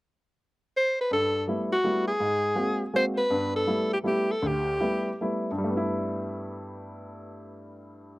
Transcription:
X:1
M:3/4
L:1/8
Q:"Swing" 1/4=161
K:G
V:1 name="Alto saxophone"
z4 c B | A2 z F2 _A- | _A4 c B- | B A2 G G A |
G4 z2 | z6 | z6 |]
V:2 name="Grand piano"
z6 | G,,2 [G,A,B,E] z [G,A,B,E] z | _A,,2 [_A,_B,C_G] z [A,B,CG] z | [G,,B,]2 [G,A,B,E] z [G,A,B,E] z |
D,,2 [G,A,B,E] z [G,A,B,E] z | [G,,G,A,B,E]6- | [G,,G,A,B,E]6 |]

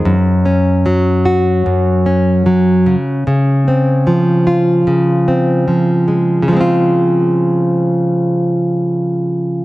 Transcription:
X:1
M:4/4
L:1/8
Q:1/4=75
K:Db
V:1 name="Nylon-string guitar" clef=bass
G,, D G, G G,, D G, D, | D, C F, F D, C F, A, | [D,F,A,CF]8 |]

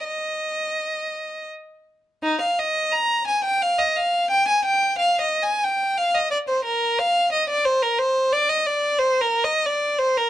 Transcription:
X:1
M:3/4
L:1/16
Q:1/4=89
K:Eb
V:1 name="Violin"
e8 z4 | E f e2 b2 a g f e f2 | g a g2 (3f2 e2 a2 g2 f e | d c B2 f2 e d c B c2 |
d e d2 (3c2 B2 e2 d2 c B |]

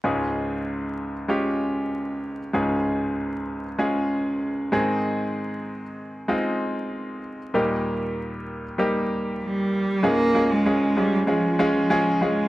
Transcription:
X:1
M:4/4
L:1/16
Q:1/4=96
K:Dblyd
V:1 name="Grand piano"
[A,DFA]6- [A,DFA] z [A,DFG]6- [A,DFG] z | [A,DFA]6- [A,DFA] z [A,DFA]6 [A,CEA]2- | [A,CEA]4- [A,CEA] z3 [A,CEF]6- [A,CEF] z | [G,B,EG]6- [G,B,EG] z [G,B,EG]6- [G,B,EG] z |
[A,DFA]2 [A,DFA]2 [A,DFA]2 [A,DFA]2 [A,DFA]2 [A,DFA]2 [A,DFA]2 [A,DFA]2 |]
V:2 name="Grand piano" clef=bass
[D,,A,,]16 | [D,,A,,]12- [D,,A,,]2 [A,,E,]2- | [A,,E,]12- [A,,E,]2 z2 | [E,,B,,]16 |
[D,,A,,]16 |]
V:3 name="Cello" clef=bass
z16 | z16 | z16 | z12 G,4 |
B,3 A,3 G,2 F,3 F,3 A,2 |]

